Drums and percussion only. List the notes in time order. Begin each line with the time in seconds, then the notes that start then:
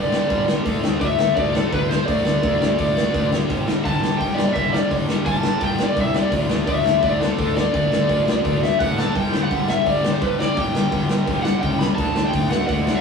0.12 snare
0.30 kick, open hi-hat
0.48 snare
0.65 kick, open hi-hat
0.84 snare
1.01 kick, open hi-hat
1.19 snare
1.37 kick, open hi-hat
1.55 snare
1.72 kick, open hi-hat
1.91 snare
2.08 kick, open hi-hat
2.25 snare
2.43 kick, open hi-hat
2.62 snare
2.78 kick, open hi-hat
2.97 snare
3.14 kick, open hi-hat
3.33 snare
3.49 kick, open hi-hat
3.68 snare
3.85 kick, open hi-hat
4.04 snare
4.21 kick, open hi-hat
4.38 snare
4.56 kick, open hi-hat
4.74 snare
4.91 kick, open hi-hat
5.09 snare
5.26 kick, open hi-hat
5.43 snare
5.60 kick, open hi-hat
5.79 snare
5.97 kick, open hi-hat
6.14 snare
6.32 kick, open hi-hat
6.50 snare
6.67 kick, open hi-hat
6.86 snare
7.03 kick, open hi-hat
7.22 snare
7.39 kick, open hi-hat
7.57 snare
7.74 kick, open hi-hat
7.92 snare
8.09 kick, open hi-hat
8.28 snare
8.45 kick, open hi-hat
8.64 snare
8.80 kick, open hi-hat
8.98 snare
9.16 kick, open hi-hat
9.34 snare
9.51 kick, open hi-hat
9.68 snare
9.86 kick, open hi-hat
10.05 snare
10.22 kick, open hi-hat
10.40 snare
10.57 kick, open hi-hat
10.75 snare
10.92 kick, open hi-hat
11.09 snare
11.27 kick, open hi-hat
11.45 snare
11.63 kick, open hi-hat
11.81 snare
11.98 kick, open hi-hat
12.16 snare
12.33 kick, open hi-hat
12.51 snare
12.69 kick, open hi-hat
12.87 snare